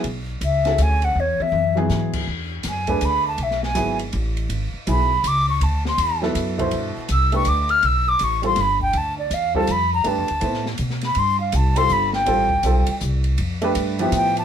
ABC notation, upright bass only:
X:1
M:3/4
L:1/8
Q:"Swing" 1/4=162
K:Emix
V:1 name="Upright bass" clef=bass
B,,,2 C,,2 D,,2 | E,, z F,,2 G,,2 | E,,2 F,,2 D,,2 | B,,,2 G,,,2 A,,,2 |
G,,, z B,,,2 C,,2 | D,,2 E,,2 F,,2 | [K:Gmix] G,, z C,,2 D,,2 | B,,,2 A,,,2 G,,,2 |
D,,2 E,,2 F,,2 | (3G,, F,, D,, A,,2 B,,2 | G,,2 C,,2 G,,,2 | A,,,2 B,,, z C,,2 |
F,,2 G,,2 A,,2 |]